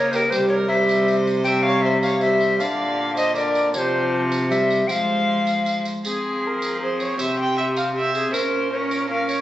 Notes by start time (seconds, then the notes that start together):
Already playing: C#3 A#3 A#4 C#5
0.11 G4 C5, tambourine
0.16 A#4
0.30 C3 G3 G4 C5, tambourine
0.49 A#4 C#5
0.68 G3 C5 E5
0.89 tambourine
1.08 tambourine
1.27 tambourine
1.44 G3 E5 G5, tambourine
1.63 C#5 F5
1.82 C5 E5
2.02 C#5 F5, tambourine
2.21 G3 C5 E5, tambourine
2.40 tambourine
2.59 A#2 D3 D5 F5, tambourine
3.17 C5 D#5, tambourine
3.35 D3 A#4 D5, tambourine
3.55 tambourine
3.74 C3 F3 G4 C#5, tambourine
3.78 C5
4.32 tambourine
4.50 G3 C5 E5, tambourine
4.70 tambourine
4.88 F3 G#3 C5 F5 G5, tambourine
5.47 tambourine
5.66 tambourine
5.85 tambourine
6.05 F3 C4 G#4, tambourine
6.46 A#4
6.62 tambourine
6.81 C4 G#4 C5
7.00 C#5, tambourine
7.18 C3 C4 G4 E5, tambourine
7.40 G5
7.57 E5
7.76 F5, tambourine
7.94 C4 G4 E5
8.14 G#4, tambourine
8.33 A#2 C#4 A#4 C5, tambourine
8.71 C#4 C5 C#5
8.75 A#4
8.91 tambourine
9.10 C#4 A#4 F5
9.29 C#5, tambourine